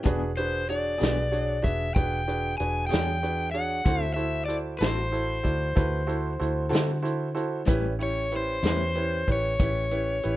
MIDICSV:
0, 0, Header, 1, 6, 480
1, 0, Start_track
1, 0, Tempo, 636267
1, 40, Time_signature, 12, 3, 24, 8
1, 7820, End_track
2, 0, Start_track
2, 0, Title_t, "Overdriven electric guitar"
2, 0, Program_c, 0, 29
2, 281, Note_on_c, 0, 72, 67
2, 523, Note_off_c, 0, 72, 0
2, 526, Note_on_c, 0, 74, 77
2, 1236, Note_on_c, 0, 76, 75
2, 1264, Note_off_c, 0, 74, 0
2, 1466, Note_off_c, 0, 76, 0
2, 1469, Note_on_c, 0, 79, 82
2, 1923, Note_off_c, 0, 79, 0
2, 1945, Note_on_c, 0, 80, 73
2, 2160, Note_off_c, 0, 80, 0
2, 2163, Note_on_c, 0, 79, 82
2, 2648, Note_off_c, 0, 79, 0
2, 2651, Note_on_c, 0, 78, 84
2, 3036, Note_off_c, 0, 78, 0
2, 3036, Note_on_c, 0, 76, 84
2, 3121, Note_off_c, 0, 76, 0
2, 3124, Note_on_c, 0, 76, 82
2, 3357, Note_off_c, 0, 76, 0
2, 3360, Note_on_c, 0, 74, 80
2, 3430, Note_off_c, 0, 74, 0
2, 3611, Note_on_c, 0, 72, 64
2, 5515, Note_off_c, 0, 72, 0
2, 6055, Note_on_c, 0, 73, 76
2, 6294, Note_off_c, 0, 73, 0
2, 6308, Note_on_c, 0, 72, 85
2, 7028, Note_off_c, 0, 72, 0
2, 7031, Note_on_c, 0, 73, 83
2, 7820, Note_off_c, 0, 73, 0
2, 7820, End_track
3, 0, Start_track
3, 0, Title_t, "Grand piano"
3, 0, Program_c, 1, 0
3, 45, Note_on_c, 1, 62, 59
3, 45, Note_on_c, 1, 68, 61
3, 45, Note_on_c, 1, 71, 59
3, 48, Note_on_c, 1, 66, 53
3, 222, Note_off_c, 1, 62, 0
3, 222, Note_off_c, 1, 68, 0
3, 223, Note_off_c, 1, 71, 0
3, 224, Note_off_c, 1, 66, 0
3, 288, Note_on_c, 1, 66, 39
3, 289, Note_on_c, 1, 62, 48
3, 291, Note_on_c, 1, 68, 43
3, 292, Note_on_c, 1, 71, 51
3, 464, Note_off_c, 1, 62, 0
3, 464, Note_off_c, 1, 66, 0
3, 465, Note_off_c, 1, 68, 0
3, 466, Note_off_c, 1, 71, 0
3, 522, Note_on_c, 1, 68, 41
3, 525, Note_on_c, 1, 66, 42
3, 525, Note_on_c, 1, 73, 49
3, 527, Note_on_c, 1, 62, 47
3, 700, Note_off_c, 1, 68, 0
3, 702, Note_off_c, 1, 66, 0
3, 702, Note_off_c, 1, 73, 0
3, 703, Note_off_c, 1, 62, 0
3, 755, Note_on_c, 1, 62, 41
3, 756, Note_on_c, 1, 66, 41
3, 759, Note_on_c, 1, 68, 41
3, 761, Note_on_c, 1, 71, 54
3, 937, Note_off_c, 1, 62, 0
3, 938, Note_off_c, 1, 66, 0
3, 939, Note_off_c, 1, 68, 0
3, 940, Note_off_c, 1, 71, 0
3, 994, Note_on_c, 1, 66, 43
3, 995, Note_on_c, 1, 68, 44
3, 998, Note_on_c, 1, 62, 47
3, 998, Note_on_c, 1, 73, 51
3, 1177, Note_off_c, 1, 66, 0
3, 1177, Note_off_c, 1, 68, 0
3, 1178, Note_off_c, 1, 62, 0
3, 1178, Note_off_c, 1, 73, 0
3, 1226, Note_on_c, 1, 66, 38
3, 1227, Note_on_c, 1, 71, 46
3, 1228, Note_on_c, 1, 62, 47
3, 1231, Note_on_c, 1, 68, 43
3, 1412, Note_off_c, 1, 66, 0
3, 1413, Note_off_c, 1, 62, 0
3, 1413, Note_off_c, 1, 71, 0
3, 1415, Note_off_c, 1, 68, 0
3, 1476, Note_on_c, 1, 71, 56
3, 1478, Note_on_c, 1, 66, 42
3, 1479, Note_on_c, 1, 62, 44
3, 1480, Note_on_c, 1, 68, 47
3, 1657, Note_off_c, 1, 71, 0
3, 1658, Note_off_c, 1, 66, 0
3, 1659, Note_off_c, 1, 62, 0
3, 1659, Note_off_c, 1, 68, 0
3, 1717, Note_on_c, 1, 62, 46
3, 1718, Note_on_c, 1, 68, 46
3, 1719, Note_on_c, 1, 71, 52
3, 1720, Note_on_c, 1, 66, 47
3, 1898, Note_off_c, 1, 62, 0
3, 1898, Note_off_c, 1, 68, 0
3, 1899, Note_off_c, 1, 66, 0
3, 1899, Note_off_c, 1, 71, 0
3, 1962, Note_on_c, 1, 71, 51
3, 1963, Note_on_c, 1, 62, 46
3, 1963, Note_on_c, 1, 66, 45
3, 1963, Note_on_c, 1, 68, 42
3, 2140, Note_off_c, 1, 71, 0
3, 2141, Note_off_c, 1, 62, 0
3, 2141, Note_off_c, 1, 66, 0
3, 2141, Note_off_c, 1, 68, 0
3, 2192, Note_on_c, 1, 62, 44
3, 2192, Note_on_c, 1, 73, 55
3, 2194, Note_on_c, 1, 68, 45
3, 2195, Note_on_c, 1, 66, 38
3, 2375, Note_off_c, 1, 62, 0
3, 2375, Note_off_c, 1, 73, 0
3, 2376, Note_off_c, 1, 66, 0
3, 2376, Note_off_c, 1, 68, 0
3, 2435, Note_on_c, 1, 68, 41
3, 2436, Note_on_c, 1, 62, 45
3, 2436, Note_on_c, 1, 66, 41
3, 2436, Note_on_c, 1, 71, 53
3, 2617, Note_off_c, 1, 62, 0
3, 2617, Note_off_c, 1, 66, 0
3, 2617, Note_off_c, 1, 68, 0
3, 2617, Note_off_c, 1, 71, 0
3, 2669, Note_on_c, 1, 73, 50
3, 2672, Note_on_c, 1, 68, 43
3, 2674, Note_on_c, 1, 66, 42
3, 2677, Note_on_c, 1, 62, 52
3, 2854, Note_off_c, 1, 73, 0
3, 2855, Note_off_c, 1, 68, 0
3, 2856, Note_off_c, 1, 66, 0
3, 2857, Note_off_c, 1, 62, 0
3, 2900, Note_on_c, 1, 66, 48
3, 2901, Note_on_c, 1, 64, 53
3, 2904, Note_on_c, 1, 69, 46
3, 2905, Note_on_c, 1, 72, 66
3, 3089, Note_off_c, 1, 64, 0
3, 3089, Note_off_c, 1, 66, 0
3, 3091, Note_off_c, 1, 69, 0
3, 3091, Note_off_c, 1, 72, 0
3, 3138, Note_on_c, 1, 69, 45
3, 3140, Note_on_c, 1, 64, 51
3, 3140, Note_on_c, 1, 66, 45
3, 3142, Note_on_c, 1, 72, 55
3, 3328, Note_off_c, 1, 69, 0
3, 3329, Note_off_c, 1, 64, 0
3, 3329, Note_off_c, 1, 66, 0
3, 3330, Note_off_c, 1, 72, 0
3, 3379, Note_on_c, 1, 69, 46
3, 3381, Note_on_c, 1, 72, 54
3, 3382, Note_on_c, 1, 66, 42
3, 3384, Note_on_c, 1, 64, 45
3, 3569, Note_off_c, 1, 69, 0
3, 3569, Note_off_c, 1, 72, 0
3, 3570, Note_off_c, 1, 66, 0
3, 3571, Note_off_c, 1, 64, 0
3, 3629, Note_on_c, 1, 66, 43
3, 3632, Note_on_c, 1, 64, 47
3, 3633, Note_on_c, 1, 69, 44
3, 3633, Note_on_c, 1, 72, 52
3, 3813, Note_off_c, 1, 66, 0
3, 3815, Note_off_c, 1, 64, 0
3, 3815, Note_off_c, 1, 72, 0
3, 3816, Note_off_c, 1, 69, 0
3, 3861, Note_on_c, 1, 64, 49
3, 3863, Note_on_c, 1, 72, 50
3, 3865, Note_on_c, 1, 66, 44
3, 3867, Note_on_c, 1, 69, 43
3, 4050, Note_off_c, 1, 64, 0
3, 4051, Note_off_c, 1, 66, 0
3, 4051, Note_off_c, 1, 72, 0
3, 4052, Note_off_c, 1, 69, 0
3, 4098, Note_on_c, 1, 66, 42
3, 4099, Note_on_c, 1, 64, 48
3, 4101, Note_on_c, 1, 74, 45
3, 4102, Note_on_c, 1, 69, 41
3, 4288, Note_off_c, 1, 66, 0
3, 4289, Note_off_c, 1, 64, 0
3, 4290, Note_off_c, 1, 69, 0
3, 4290, Note_off_c, 1, 74, 0
3, 4341, Note_on_c, 1, 69, 53
3, 4342, Note_on_c, 1, 71, 67
3, 4344, Note_on_c, 1, 64, 54
3, 4345, Note_on_c, 1, 66, 56
3, 4529, Note_off_c, 1, 69, 0
3, 4530, Note_off_c, 1, 71, 0
3, 4531, Note_off_c, 1, 64, 0
3, 4531, Note_off_c, 1, 66, 0
3, 4579, Note_on_c, 1, 72, 64
3, 4580, Note_on_c, 1, 64, 56
3, 4580, Note_on_c, 1, 66, 58
3, 4584, Note_on_c, 1, 69, 56
3, 4769, Note_off_c, 1, 64, 0
3, 4769, Note_off_c, 1, 66, 0
3, 4769, Note_off_c, 1, 72, 0
3, 4771, Note_off_c, 1, 69, 0
3, 4824, Note_on_c, 1, 72, 67
3, 4826, Note_on_c, 1, 66, 52
3, 4826, Note_on_c, 1, 69, 52
3, 4827, Note_on_c, 1, 64, 52
3, 5011, Note_off_c, 1, 72, 0
3, 5012, Note_off_c, 1, 66, 0
3, 5012, Note_off_c, 1, 69, 0
3, 5013, Note_off_c, 1, 64, 0
3, 5053, Note_on_c, 1, 64, 55
3, 5055, Note_on_c, 1, 72, 63
3, 5056, Note_on_c, 1, 66, 51
3, 5056, Note_on_c, 1, 69, 59
3, 5246, Note_off_c, 1, 64, 0
3, 5247, Note_off_c, 1, 66, 0
3, 5247, Note_off_c, 1, 69, 0
3, 5247, Note_off_c, 1, 72, 0
3, 5300, Note_on_c, 1, 66, 50
3, 5300, Note_on_c, 1, 72, 66
3, 5301, Note_on_c, 1, 64, 62
3, 5303, Note_on_c, 1, 69, 49
3, 5489, Note_off_c, 1, 72, 0
3, 5490, Note_off_c, 1, 64, 0
3, 5490, Note_off_c, 1, 66, 0
3, 5491, Note_off_c, 1, 69, 0
3, 5542, Note_on_c, 1, 72, 66
3, 5543, Note_on_c, 1, 64, 56
3, 5545, Note_on_c, 1, 69, 57
3, 5548, Note_on_c, 1, 66, 54
3, 5731, Note_off_c, 1, 64, 0
3, 5731, Note_off_c, 1, 72, 0
3, 5732, Note_off_c, 1, 69, 0
3, 5734, Note_off_c, 1, 66, 0
3, 5785, Note_on_c, 1, 64, 62
3, 5786, Note_on_c, 1, 67, 60
3, 5788, Note_on_c, 1, 61, 60
3, 5790, Note_on_c, 1, 71, 81
3, 5973, Note_off_c, 1, 64, 0
3, 5973, Note_off_c, 1, 67, 0
3, 5974, Note_off_c, 1, 61, 0
3, 5975, Note_off_c, 1, 71, 0
3, 6027, Note_on_c, 1, 61, 49
3, 6028, Note_on_c, 1, 73, 56
3, 6029, Note_on_c, 1, 64, 44
3, 6029, Note_on_c, 1, 67, 48
3, 6213, Note_off_c, 1, 61, 0
3, 6214, Note_off_c, 1, 64, 0
3, 6214, Note_off_c, 1, 73, 0
3, 6215, Note_off_c, 1, 67, 0
3, 6274, Note_on_c, 1, 71, 47
3, 6277, Note_on_c, 1, 64, 45
3, 6278, Note_on_c, 1, 61, 48
3, 6278, Note_on_c, 1, 67, 45
3, 6457, Note_off_c, 1, 71, 0
3, 6459, Note_off_c, 1, 61, 0
3, 6459, Note_off_c, 1, 64, 0
3, 6459, Note_off_c, 1, 67, 0
3, 6519, Note_on_c, 1, 61, 47
3, 6521, Note_on_c, 1, 71, 50
3, 6522, Note_on_c, 1, 67, 45
3, 6524, Note_on_c, 1, 64, 43
3, 6700, Note_off_c, 1, 61, 0
3, 6701, Note_off_c, 1, 71, 0
3, 6702, Note_off_c, 1, 67, 0
3, 6703, Note_off_c, 1, 64, 0
3, 6754, Note_on_c, 1, 61, 47
3, 6755, Note_on_c, 1, 67, 46
3, 6758, Note_on_c, 1, 64, 43
3, 6758, Note_on_c, 1, 71, 56
3, 6938, Note_off_c, 1, 61, 0
3, 6938, Note_off_c, 1, 67, 0
3, 6939, Note_off_c, 1, 71, 0
3, 6940, Note_off_c, 1, 64, 0
3, 6997, Note_on_c, 1, 71, 54
3, 6999, Note_on_c, 1, 64, 43
3, 7000, Note_on_c, 1, 61, 48
3, 7000, Note_on_c, 1, 67, 44
3, 7179, Note_off_c, 1, 71, 0
3, 7180, Note_off_c, 1, 64, 0
3, 7181, Note_off_c, 1, 61, 0
3, 7181, Note_off_c, 1, 67, 0
3, 7237, Note_on_c, 1, 67, 44
3, 7239, Note_on_c, 1, 61, 55
3, 7239, Note_on_c, 1, 64, 47
3, 7240, Note_on_c, 1, 71, 52
3, 7420, Note_off_c, 1, 61, 0
3, 7420, Note_off_c, 1, 67, 0
3, 7421, Note_off_c, 1, 64, 0
3, 7421, Note_off_c, 1, 71, 0
3, 7477, Note_on_c, 1, 64, 44
3, 7480, Note_on_c, 1, 61, 50
3, 7481, Note_on_c, 1, 71, 55
3, 7484, Note_on_c, 1, 67, 42
3, 7660, Note_off_c, 1, 64, 0
3, 7661, Note_off_c, 1, 61, 0
3, 7662, Note_off_c, 1, 71, 0
3, 7663, Note_off_c, 1, 67, 0
3, 7721, Note_on_c, 1, 64, 54
3, 7722, Note_on_c, 1, 61, 53
3, 7722, Note_on_c, 1, 67, 50
3, 7723, Note_on_c, 1, 71, 60
3, 7820, Note_off_c, 1, 61, 0
3, 7820, Note_off_c, 1, 64, 0
3, 7820, Note_off_c, 1, 67, 0
3, 7820, Note_off_c, 1, 71, 0
3, 7820, End_track
4, 0, Start_track
4, 0, Title_t, "Clean electric guitar"
4, 0, Program_c, 2, 27
4, 25, Note_on_c, 2, 52, 70
4, 29, Note_on_c, 2, 59, 77
4, 38, Note_on_c, 2, 62, 74
4, 38, Note_on_c, 2, 68, 83
4, 176, Note_off_c, 2, 52, 0
4, 178, Note_off_c, 2, 59, 0
4, 183, Note_off_c, 2, 62, 0
4, 183, Note_off_c, 2, 68, 0
4, 741, Note_on_c, 2, 68, 51
4, 749, Note_on_c, 2, 62, 53
4, 751, Note_on_c, 2, 59, 45
4, 755, Note_on_c, 2, 52, 41
4, 894, Note_off_c, 2, 68, 0
4, 898, Note_off_c, 2, 62, 0
4, 899, Note_off_c, 2, 59, 0
4, 901, Note_off_c, 2, 52, 0
4, 2181, Note_on_c, 2, 68, 61
4, 2190, Note_on_c, 2, 59, 50
4, 2191, Note_on_c, 2, 62, 50
4, 2194, Note_on_c, 2, 52, 45
4, 2334, Note_off_c, 2, 68, 0
4, 2338, Note_off_c, 2, 59, 0
4, 2338, Note_off_c, 2, 62, 0
4, 2340, Note_off_c, 2, 52, 0
4, 2915, Note_on_c, 2, 50, 60
4, 2922, Note_on_c, 2, 60, 70
4, 2926, Note_on_c, 2, 66, 64
4, 2930, Note_on_c, 2, 69, 71
4, 3061, Note_off_c, 2, 50, 0
4, 3064, Note_off_c, 2, 60, 0
4, 3066, Note_off_c, 2, 66, 0
4, 3068, Note_off_c, 2, 69, 0
4, 3628, Note_on_c, 2, 69, 51
4, 3640, Note_on_c, 2, 60, 41
4, 3642, Note_on_c, 2, 66, 56
4, 3647, Note_on_c, 2, 50, 43
4, 3777, Note_off_c, 2, 69, 0
4, 3783, Note_off_c, 2, 60, 0
4, 3784, Note_off_c, 2, 66, 0
4, 3786, Note_off_c, 2, 50, 0
4, 5050, Note_on_c, 2, 69, 69
4, 5057, Note_on_c, 2, 66, 65
4, 5066, Note_on_c, 2, 60, 56
4, 5070, Note_on_c, 2, 50, 54
4, 5208, Note_off_c, 2, 69, 0
4, 5212, Note_off_c, 2, 66, 0
4, 5217, Note_off_c, 2, 60, 0
4, 5218, Note_off_c, 2, 50, 0
4, 5777, Note_on_c, 2, 45, 74
4, 5777, Note_on_c, 2, 55, 83
4, 5783, Note_on_c, 2, 61, 80
4, 5788, Note_on_c, 2, 64, 86
4, 5932, Note_off_c, 2, 45, 0
4, 5932, Note_off_c, 2, 55, 0
4, 5935, Note_off_c, 2, 61, 0
4, 5938, Note_off_c, 2, 64, 0
4, 6509, Note_on_c, 2, 64, 61
4, 6513, Note_on_c, 2, 55, 49
4, 6514, Note_on_c, 2, 61, 60
4, 6525, Note_on_c, 2, 45, 47
4, 6659, Note_off_c, 2, 64, 0
4, 6661, Note_off_c, 2, 55, 0
4, 6661, Note_off_c, 2, 61, 0
4, 6667, Note_off_c, 2, 45, 0
4, 7820, End_track
5, 0, Start_track
5, 0, Title_t, "Fingered electric bass"
5, 0, Program_c, 3, 33
5, 44, Note_on_c, 3, 28, 67
5, 731, Note_off_c, 3, 28, 0
5, 766, Note_on_c, 3, 35, 83
5, 1212, Note_off_c, 3, 35, 0
5, 1247, Note_on_c, 3, 28, 69
5, 1464, Note_off_c, 3, 28, 0
5, 1486, Note_on_c, 3, 28, 81
5, 1932, Note_off_c, 3, 28, 0
5, 1965, Note_on_c, 3, 28, 71
5, 2183, Note_off_c, 3, 28, 0
5, 2210, Note_on_c, 3, 40, 87
5, 2894, Note_off_c, 3, 40, 0
5, 2910, Note_on_c, 3, 38, 70
5, 3604, Note_off_c, 3, 38, 0
5, 3626, Note_on_c, 3, 33, 89
5, 4082, Note_off_c, 3, 33, 0
5, 4117, Note_on_c, 3, 38, 69
5, 4338, Note_off_c, 3, 38, 0
5, 4353, Note_on_c, 3, 38, 85
5, 4805, Note_off_c, 3, 38, 0
5, 4836, Note_on_c, 3, 38, 69
5, 5058, Note_off_c, 3, 38, 0
5, 5073, Note_on_c, 3, 50, 85
5, 5766, Note_off_c, 3, 50, 0
5, 5791, Note_on_c, 3, 33, 82
5, 6486, Note_off_c, 3, 33, 0
5, 6509, Note_on_c, 3, 40, 93
5, 6965, Note_off_c, 3, 40, 0
5, 7002, Note_on_c, 3, 33, 68
5, 7223, Note_off_c, 3, 33, 0
5, 7244, Note_on_c, 3, 33, 76
5, 7694, Note_off_c, 3, 33, 0
5, 7735, Note_on_c, 3, 33, 68
5, 7820, Note_off_c, 3, 33, 0
5, 7820, End_track
6, 0, Start_track
6, 0, Title_t, "Drums"
6, 43, Note_on_c, 9, 36, 85
6, 44, Note_on_c, 9, 42, 68
6, 118, Note_off_c, 9, 36, 0
6, 119, Note_off_c, 9, 42, 0
6, 283, Note_on_c, 9, 42, 42
6, 358, Note_off_c, 9, 42, 0
6, 516, Note_on_c, 9, 42, 52
6, 592, Note_off_c, 9, 42, 0
6, 763, Note_on_c, 9, 42, 70
6, 779, Note_on_c, 9, 38, 93
6, 839, Note_off_c, 9, 42, 0
6, 855, Note_off_c, 9, 38, 0
6, 1004, Note_on_c, 9, 42, 47
6, 1079, Note_off_c, 9, 42, 0
6, 1240, Note_on_c, 9, 36, 68
6, 1247, Note_on_c, 9, 42, 49
6, 1315, Note_off_c, 9, 36, 0
6, 1322, Note_off_c, 9, 42, 0
6, 1479, Note_on_c, 9, 36, 104
6, 1484, Note_on_c, 9, 42, 74
6, 1554, Note_off_c, 9, 36, 0
6, 1559, Note_off_c, 9, 42, 0
6, 1726, Note_on_c, 9, 42, 49
6, 1802, Note_off_c, 9, 42, 0
6, 1959, Note_on_c, 9, 42, 54
6, 2034, Note_off_c, 9, 42, 0
6, 2199, Note_on_c, 9, 42, 76
6, 2215, Note_on_c, 9, 38, 92
6, 2275, Note_off_c, 9, 42, 0
6, 2291, Note_off_c, 9, 38, 0
6, 2442, Note_on_c, 9, 42, 60
6, 2518, Note_off_c, 9, 42, 0
6, 2675, Note_on_c, 9, 42, 52
6, 2750, Note_off_c, 9, 42, 0
6, 2910, Note_on_c, 9, 36, 96
6, 2911, Note_on_c, 9, 42, 73
6, 2985, Note_off_c, 9, 36, 0
6, 2986, Note_off_c, 9, 42, 0
6, 3147, Note_on_c, 9, 42, 44
6, 3222, Note_off_c, 9, 42, 0
6, 3390, Note_on_c, 9, 42, 60
6, 3466, Note_off_c, 9, 42, 0
6, 3623, Note_on_c, 9, 42, 76
6, 3639, Note_on_c, 9, 38, 95
6, 3698, Note_off_c, 9, 42, 0
6, 3714, Note_off_c, 9, 38, 0
6, 3873, Note_on_c, 9, 42, 42
6, 3948, Note_off_c, 9, 42, 0
6, 4110, Note_on_c, 9, 36, 63
6, 4115, Note_on_c, 9, 42, 51
6, 4185, Note_off_c, 9, 36, 0
6, 4190, Note_off_c, 9, 42, 0
6, 4351, Note_on_c, 9, 36, 95
6, 4356, Note_on_c, 9, 42, 67
6, 4427, Note_off_c, 9, 36, 0
6, 4431, Note_off_c, 9, 42, 0
6, 4596, Note_on_c, 9, 42, 44
6, 4671, Note_off_c, 9, 42, 0
6, 4838, Note_on_c, 9, 42, 47
6, 4913, Note_off_c, 9, 42, 0
6, 5075, Note_on_c, 9, 42, 70
6, 5091, Note_on_c, 9, 38, 103
6, 5151, Note_off_c, 9, 42, 0
6, 5166, Note_off_c, 9, 38, 0
6, 5319, Note_on_c, 9, 42, 56
6, 5394, Note_off_c, 9, 42, 0
6, 5556, Note_on_c, 9, 42, 47
6, 5632, Note_off_c, 9, 42, 0
6, 5793, Note_on_c, 9, 36, 96
6, 5797, Note_on_c, 9, 42, 81
6, 5868, Note_off_c, 9, 36, 0
6, 5872, Note_off_c, 9, 42, 0
6, 6037, Note_on_c, 9, 42, 44
6, 6112, Note_off_c, 9, 42, 0
6, 6273, Note_on_c, 9, 42, 56
6, 6349, Note_off_c, 9, 42, 0
6, 6513, Note_on_c, 9, 42, 81
6, 6529, Note_on_c, 9, 38, 93
6, 6589, Note_off_c, 9, 42, 0
6, 6604, Note_off_c, 9, 38, 0
6, 6755, Note_on_c, 9, 42, 49
6, 6831, Note_off_c, 9, 42, 0
6, 7000, Note_on_c, 9, 36, 63
6, 7004, Note_on_c, 9, 42, 57
6, 7075, Note_off_c, 9, 36, 0
6, 7079, Note_off_c, 9, 42, 0
6, 7240, Note_on_c, 9, 36, 97
6, 7240, Note_on_c, 9, 42, 81
6, 7316, Note_off_c, 9, 36, 0
6, 7316, Note_off_c, 9, 42, 0
6, 7478, Note_on_c, 9, 42, 49
6, 7554, Note_off_c, 9, 42, 0
6, 7719, Note_on_c, 9, 42, 56
6, 7795, Note_off_c, 9, 42, 0
6, 7820, End_track
0, 0, End_of_file